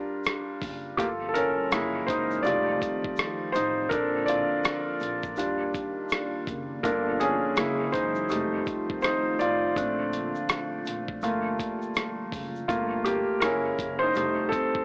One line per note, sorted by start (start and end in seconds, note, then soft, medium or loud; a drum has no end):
0.00 0.58 G3 medium
0.00 0.58 D4 soft
0.00 0.58 F4 medium
0.00 0.58 A#4 loud
0.24 cross-stick loud
0.24 closed hi-hat medium
0.24 shaker medium
0.62 0.94 F#1 medium
0.62 kick medium
0.62 open hi-hat soft
0.62 shaker soft
0.97 1.51 G1 loud
0.97 1.71 D3 medium
0.97 1.71 F3 medium
0.97 1.71 G3 medium
0.97 2.43 A#3 medium
0.97 1.06 A#3 medium
0.97 1.71 F4 medium
0.97 1.68 F4 medium
0.97 1.05 G4 medium
0.97 1.27 A4 medium
0.97 kick loud
0.97 closed hi-hat medium
0.97 shaker medium
1.29 1.35 A4 medium
1.34 2.05 C#4 medium
1.34 2.10 A#4 medium
1.34 closed hi-hat medium
1.34 shaker medium
1.71 2.04 F#1 loud
1.71 2.44 C#3 medium
1.71 2.44 E3 medium
1.71 2.44 F#3 medium
1.71 2.41 G#3 medium
1.71 2.44 G#3 medium
1.71 2.41 A#3 medium
1.71 2.42 E4 medium
1.71 cross-stick loud
1.71 closed hi-hat medium
1.71 shaker medium
2.07 2.41 F#1 medium
2.07 2.43 D#4 medium
2.07 2.45 C5 medium
2.07 kick loud
2.07 closed hi-hat medium
2.07 shaker soft
2.31 shaker medium
2.43 2.77 F1 loud
2.43 3.90 D#3 medium
2.43 5.35 F3 medium
2.43 2.96 G3 medium
2.43 2.97 A3 soft
2.43 3.90 C4 medium
2.43 2.97 D#4 medium
2.43 7.53 F4 medium
2.43 3.51 F4 medium
2.43 3.49 D5 medium
2.43 shaker medium
2.47 closed hi-hat medium
2.81 kick medium
2.81 closed hi-hat medium
2.81 shaker soft
3.04 kick medium
3.17 cross-stick loud
3.17 closed hi-hat medium
3.17 shaker medium
3.52 3.87 A1 medium
3.52 3.89 D#4 medium
3.52 3.91 C5 medium
3.52 closed hi-hat medium
3.52 shaker soft
3.89 4.43 A#1 loud
3.89 5.36 D3 medium
3.89 8.26 A#3 medium
3.89 4.43 C4 soft
3.89 4.26 D4 medium
3.89 4.43 A4 medium
3.89 4.28 A#4 medium
3.89 kick loud
3.89 closed hi-hat medium
3.89 shaker medium
4.26 5.37 F4 medium
4.26 6.42 D5 medium
4.26 closed hi-hat medium
4.26 shaker soft
4.64 cross-stick loud
4.64 closed hi-hat medium
4.64 shaker medium
5.00 5.33 A#1 medium
5.00 closed hi-hat medium
5.00 shaker soft
5.23 kick medium
5.23 shaker medium
5.36 5.70 D#2 loud
5.36 6.83 D#3 medium
5.36 6.80 G3 medium
5.36 6.80 D4 medium
5.36 6.83 D4 medium
5.36 6.80 F4 medium
5.36 closed hi-hat medium
5.36 shaker medium
5.74 kick medium
5.74 closed hi-hat medium
5.74 shaker soft
6.09 cross-stick loud
6.09 closed hi-hat medium
6.09 shaker medium
6.47 6.79 F#1 medium
6.47 kick medium
6.47 closed hi-hat medium
6.47 shaker soft
6.83 7.36 G1 loud
6.83 7.57 D3 medium
6.83 7.57 F3 medium
6.83 7.53 A#3 soft
6.83 7.18 D4 medium
6.83 7.54 F4 medium
6.83 7.53 A4 medium
6.83 7.21 A#4 medium
6.83 kick loud
6.83 closed hi-hat medium
6.83 shaker medium
7.20 7.90 C#4 medium
7.20 7.95 G#4 medium
7.20 closed hi-hat medium
7.20 shaker soft
7.56 7.89 F#1 loud
7.56 8.30 C#3 medium
7.56 8.29 E3 medium
7.56 8.30 F#3 medium
7.56 8.26 G#3 medium
7.56 8.29 G#3 medium
7.56 8.27 A#3 medium
7.56 8.27 E4 medium
7.56 cross-stick loud
7.56 closed hi-hat medium
7.56 shaker medium
7.92 8.26 F#1 medium
7.92 8.29 D#4 medium
7.92 9.01 C5 medium
7.92 kick medium
7.92 closed hi-hat medium
7.92 shaker soft
8.15 shaker medium
8.29 8.62 F1 medium
8.29 9.75 D#3 medium
8.29 12.65 F3 medium
8.29 9.72 G3 medium
8.29 9.72 A3 soft
8.29 11.20 A3 medium
8.29 9.75 C4 medium
8.29 9.03 D#4 medium
8.29 12.65 F4 medium
8.29 closed hi-hat medium
8.29 shaker medium
8.66 kick medium
8.66 closed hi-hat medium
8.66 shaker soft
8.90 kick medium
9.02 9.12 D#4 medium
9.02 9.11 C5 loud
9.02 cross-stick loud
9.02 closed hi-hat medium
9.02 shaker medium
9.39 9.72 A1 medium
9.39 11.23 F4 medium
9.39 11.55 D5 medium
9.39 closed hi-hat medium
9.39 shaker soft
9.76 10.29 A#1 loud
9.76 12.66 A#2 medium
9.76 12.66 D3 medium
9.76 10.28 A3 medium
9.76 10.28 C4 soft
9.76 10.29 D4 medium
9.76 kick loud
9.76 closed hi-hat medium
9.76 shaker medium
10.13 closed hi-hat medium
10.13 shaker medium
10.35 shaker medium
10.49 cross-stick loud
10.49 closed hi-hat medium
10.49 shaker medium
10.85 11.19 A#1 medium
10.85 closed hi-hat medium
10.85 shaker soft
11.08 kick loud
11.22 11.55 G1 medium
11.22 12.68 G3 medium
11.22 11.75 A3 medium
11.22 11.75 A#3 soft
11.22 11.75 F4 medium
11.22 closed hi-hat medium
11.22 shaker medium
11.59 kick medium
11.59 closed hi-hat medium
11.59 shaker soft
11.82 shaker soft
11.95 cross-stick loud
11.95 closed hi-hat medium
11.95 shaker medium
12.32 12.65 F#1 medium
12.32 kick medium
12.32 open hi-hat soft
12.32 shaker soft
12.55 shaker soft
12.68 13.21 G1 loud
12.68 13.38 A3 medium
12.68 13.04 A#3 medium
12.68 13.39 F4 medium
12.68 kick loud
12.68 closed hi-hat medium
12.68 shaker medium
13.04 13.40 A#3 medium
13.04 13.43 G4 medium
13.04 closed hi-hat medium
13.04 shaker soft
13.40 13.75 F#1 loud
13.40 14.12 G#3 medium
13.40 14.12 A#3 medium
13.40 13.98 C#4 medium
13.40 14.12 E4 medium
13.40 14.02 A#4 medium
13.40 cross-stick loud
13.40 closed hi-hat medium
13.40 shaker medium
13.78 14.11 F#1 medium
13.78 kick medium
13.78 closed hi-hat medium
13.78 shaker soft
13.99 14.15 D#4 medium
13.99 14.52 C5 loud
14.15 14.48 F1 loud
14.15 14.67 G3 medium
14.15 14.67 A3 soft
14.15 14.68 D#4 medium
14.15 closed hi-hat medium
14.15 shaker medium
14.49 14.85 C4 medium
14.49 14.85 A4 loud
14.49 kick medium
14.49 shaker soft
14.53 closed hi-hat medium
14.75 kick medium